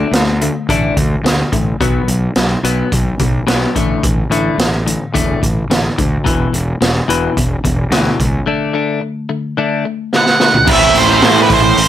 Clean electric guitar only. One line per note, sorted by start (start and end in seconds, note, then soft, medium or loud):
0.00 0.11 D3 medium
0.00 0.11 A3 medium
0.00 0.12 D4 medium
0.14 0.38 D3 medium
0.14 0.38 A3 medium
0.42 0.66 D3 medium
0.42 0.67 A3 medium
0.69 0.95 D3 medium
0.69 0.95 A3 medium
0.69 0.96 D4 medium
0.97 1.22 D3 medium
0.97 1.22 A3 medium
1.24 1.50 D3 medium
1.24 1.50 A3 medium
1.52 1.77 D3 medium
1.52 1.78 A3 medium
1.81 2.07 B2 medium
1.81 2.07 F#3 medium
1.81 2.07 B3 medium
2.09 2.34 B2 medium
2.09 2.34 F#3 medium
2.37 2.61 B2 medium
2.37 2.62 F#3 medium
2.64 2.90 B2 medium
2.64 2.90 F#3 medium
2.64 2.90 B3 medium
2.92 3.17 B2 medium
2.92 3.17 F#3 medium
3.20 3.45 B2 medium
3.20 3.45 F#3 medium
3.47 3.73 B2 medium
3.47 3.74 F#3 medium
3.47 3.74 B3 medium
3.75 4.01 A2 medium
3.75 4.02 D3 medium
3.75 4.02 A3 medium
4.04 4.29 A2 medium
4.31 4.57 A2 medium
4.31 4.57 D3 medium
4.31 4.58 A3 medium
4.59 4.84 A2 medium
4.59 4.84 D3 medium
4.86 5.12 A2 medium
4.86 5.12 D3 medium
5.14 5.40 A2 medium
5.14 5.40 D3 medium
5.14 5.41 A3 medium
5.42 5.67 A2 medium
5.42 5.67 D3 medium
5.70 5.95 A2 medium
5.70 5.95 D3 medium
5.98 6.23 A2 medium
5.98 6.23 D3 medium
6.24 6.51 E2 medium
6.24 6.51 B2 medium
6.24 6.52 E3 medium
6.53 6.78 E2 medium
6.53 6.78 B2 medium
6.81 7.06 E2 medium
6.81 7.06 B2 medium
7.08 7.35 E2 medium
7.08 7.35 B2 medium
7.08 7.35 E3 medium
7.37 7.62 E2 medium
7.37 7.62 B2 medium
7.64 7.89 E2 medium
7.64 7.89 B2 medium
7.92 8.18 E2 medium
7.92 8.18 B2 medium
7.92 8.18 E3 medium
8.19 8.45 E2 medium
8.19 8.45 B2 medium
8.46 8.72 D3 medium
8.46 8.73 A3 medium
8.46 8.73 D4 medium
8.73 9.00 D3 medium
8.73 9.00 A3 medium
8.73 9.01 D4 medium
9.01 9.27 D3 medium
9.29 9.55 D3 medium
9.29 9.55 A3 medium
9.57 9.83 D3 medium
9.57 9.84 A3 medium
9.57 9.84 D4 medium
9.85 10.10 D3 medium
9.85 10.10 A3 medium
10.13 10.38 D3 medium
10.13 10.38 A3 medium
10.41 10.65 D3 medium
10.41 10.65 A3 medium